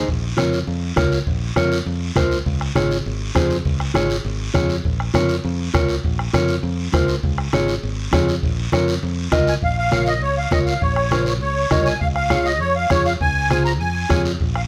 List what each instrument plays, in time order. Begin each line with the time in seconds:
0.08 fingered electric bass A#1, bombo low, high conga, long guiro
0.37 fingered electric bass F2, clean electric guitar F4 A#4 C#5, bombo rim, high conga, short guiro
0.53 short guiro
0.67 fingered electric bass F2, high conga, long guiro
0.96 fingered electric bass C#2, clean electric guitar F4 A#4 C#5, bombo low, bombo rim, high conga, short guiro
1.12 short guiro
1.27 fingered electric bass A#1, bombo low, high conga, long guiro
1.56 fingered electric bass F2, clean electric guitar F4 A#4 C#5, bombo rim, high conga, short guiro
1.72 short guiro
1.86 fingered electric bass F2, high conga, long guiro
2.16 fingered electric bass C#2, clean electric guitar F4 A#4 C5, bombo low, bombo rim, high conga, short guiro
2.31 short guiro
2.46 fingered electric bass C#2, bombo low, high conga, long guiro
2.61 bombo rim
2.75 fingered electric bass G#1, clean electric guitar F4 G#4 C#5, bombo rim, high conga, short guiro
2.91 short guiro
3.05 fingered electric bass G#1, high conga, long guiro
3.35 fingered electric bass F2, clean electric guitar F4 G#4 C5, bombo low, bombo rim, high conga, short guiro
3.50 short guiro
3.65 fingered electric bass C#2, bombo low, high conga, long guiro
3.80 bombo rim
3.94 fingered electric bass G#1, clean electric guitar F4 G#4 C#5, bombo rim, high conga, short guiro
4.10 short guiro
4.25 fingered electric bass G#1, high conga, long guiro
4.54 fingered electric bass F2, clean electric guitar F4 G#4 C#5, bombo low, bombo rim, high conga, short guiro
4.69 short guiro
4.84 fingered electric bass A#1, bombo low, high conga, long guiro
5.00 bombo rim
5.14 fingered electric bass F2, clean electric guitar F4 A#4 C#5, bombo rim, high conga, short guiro
5.29 short guiro
5.44 fingered electric bass F2, high conga, long guiro
5.74 fingered electric bass C#2, clean electric guitar F4 A#4 C#5, bombo low, bombo rim, high conga, short guiro
5.89 short guiro
6.03 fingered electric bass A#1, bombo low, high conga, long guiro
6.19 bombo rim
6.33 fingered electric bass F2, clean electric guitar F4 A#4 C#5, bombo rim, high conga, short guiro
6.48 short guiro
6.63 fingered electric bass F2, high conga, long guiro
6.93 fingered electric bass C#2, clean electric guitar F4 A#4 C5, bombo low, bombo rim, high conga, short guiro
7.08 short guiro
7.23 fingered electric bass C#2, bombo low, high conga, long guiro
7.38 bombo rim
7.53 fingered electric bass G#1, clean electric guitar F4 G#4 C#5, bombo rim, high conga, short guiro
7.68 short guiro
7.83 fingered electric bass G#1, high conga, long guiro
8.13 fingered electric bass F2, clean electric guitar F4 G#4 C#5, bombo low, bombo rim, high conga, short guiro
8.29 short guiro
8.43 fingered electric bass A#1, bombo low, high conga, long guiro
8.72 fingered electric bass F2, clean electric guitar F4 A#4 C#5, bombo rim, high conga, short guiro
8.88 short guiro
9.02 fingered electric bass F2, high conga, long guiro
9.32 fingered electric bass C#2, clean electric guitar F4 A#4 D#5, bombo low, bombo rim, high conga, short guiro
9.47 accordion G#5, short guiro
9.62 fingered electric bass A#1, accordion F5, bombo low, high conga, long guiro
9.78 accordion F5
9.91 clean electric guitar F4 A#4 C#5, bombo rim, high conga, short guiro
10.06 accordion D#5, short guiro
10.22 fingered electric bass C#2, accordion C#5, high conga, long guiro
10.38 accordion F5
10.51 fingered electric bass C#2, clean electric guitar F4 A#4 C#5, accordion D#5, bombo low, bombo rim, high conga, short guiro
10.66 accordion F5, short guiro
10.81 fingered electric bass A#1, accordion C#5, bombo low, high conga, long guiro
10.96 bombo rim
11.11 clean electric guitar F4 A#4 C5, bombo rim, high conga, short guiro
11.26 accordion C#5, short guiro
11.41 fingered electric bass C#2, accordion C#5, high conga, long guiro
11.71 fingered electric bass C2, clean electric guitar F4 A#4 D#5, bombo low, bombo rim, high conga, short guiro
11.85 accordion G#5, short guiro
12.00 fingered electric bass C#2, accordion F5, bombo low, high conga, long guiro
12.15 accordion F5, bombo rim
12.30 clean electric guitar F4 G#4 C#5, bombo rim, high conga, short guiro
12.45 accordion D#5, short guiro
12.60 fingered electric bass F2, accordion C#5, high conga, long guiro
12.76 accordion F5
12.90 fingered electric bass F2, clean electric guitar F4 G#4 C#5, accordion C#5, bombo low, bombo rim, high conga, short guiro
13.06 accordion F5, short guiro
13.21 fingered electric bass C#2, accordion G#5, bombo low, high conga, long guiro
13.51 clean electric guitar F4 G#4 C5, bombo rim, high conga, short guiro
13.65 accordion A#5, short guiro
13.80 fingered electric bass F2, accordion G#5, high conga, long guiro
14.09 fingered electric bass F2, clean electric guitar F4 G#4 C#5, bombo low, bombo rim, high conga, short guiro
14.25 short guiro
14.40 fingered electric bass A#1, bombo low, high conga, long guiro
14.55 accordion F5, bombo rim